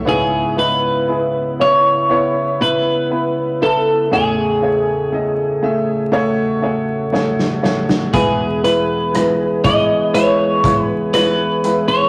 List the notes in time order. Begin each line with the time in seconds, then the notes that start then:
0.05 C#2 G#2 C#3 B3 E4 G#4 C#5
0.56 B3 E4 B4 D#5
1.08 B3 E4 G#4
1.59 B3 E4 C#5
2.10 B3 E4 C#5
2.60 B3 E4 B4 E5
3.10 B3 E4 B4
3.61 B3 E4 A4 B4
4.11 A1 E2 A3 G#4 C#5
4.62 A3 G#4 C#5
5.12 A3 G#4 D#5
5.62 A3 G#4 E5
6.12 A3 F#4 G#4 C#5
6.62 A3 G#4 C#5
7.12 A3 G#4 C#5, snare
7.39 snare
7.63 A3 G#4 C#5, snare
7.89 snare
8.13 E2 B2 E3 G#3 B3 E4 G#4 B4, kick, closed hi-hat
8.63 G#3 E4 B4, closed hi-hat
9.14 G#3 E4 B4, cross-stick, closed hi-hat
9.64 G#3 E4 C#5 D#5, kick, closed hi-hat
10.13 G#3 E4 B4 C#5, closed hi-hat
10.64 G#3 E4 C#5, kick, closed hi-hat
10.81 B4
11.14 G#3 E4 B4 C#5, cross-stick, closed hi-hat
11.64 G#3 E4 B4, closed hi-hat
11.88 C#5